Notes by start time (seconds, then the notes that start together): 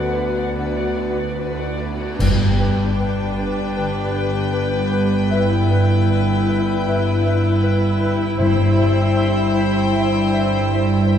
Already playing: D2 D3 B3 D4 F#4 B4 D5 F#5
0.01 D5
0.14 D4 B4 D5
0.28 B3
0.34 F#4 D5 F#5
0.55 D3 D4 B4 D5
0.75 F#4 D5 F#5
0.83 D4
0.95 D4 B4 D5
1.11 B3 F#5
1.16 F#4 D5
1.36 D4 F#4 B4 D5
1.56 F#4 F#5
1.60 D5
1.66 D5
1.77 D4 B4 D5
1.94 B3
1.98 F#4 D5 F#5
2.19 G1 G2 B3 D4 G4 B4 G5, concert bass drum, crash
2.47 B3
2.59 B4 G5
2.73 D5
3.00 B4 G5
3.25 D5
3.38 B4 G5
3.52 G4
3.76 D3 B4 G5
4.03 B3
4.14 B4 G5
4.28 D5
4.53 B4 G5
4.80 D5
4.92 B4 G5
5.05 G4
5.30 G2 E4 B4 E5
5.57 B3
5.70 B4 E5
5.83 E5
6.10 B4 E5
6.36 E5
6.48 B4 E5
6.62 G4
6.87 G2 B4 E5
7.13 B3
7.25 B4 E5
7.38 E5
7.63 B4 E5
7.89 E5
8.00 B4 E5
8.15 G4
8.38 G1 G2 C4 C5 E5
8.42 G5
8.65 C4
8.77 C5 E5
8.91 E5
9.15 C5 E5
9.43 E5
9.55 C5 E5
9.69 G4
9.93 G3 C5 E5
10.19 C4
10.31 C5 E5
10.45 E5
10.69 C5 E5
10.95 E5
11.06 C5 E5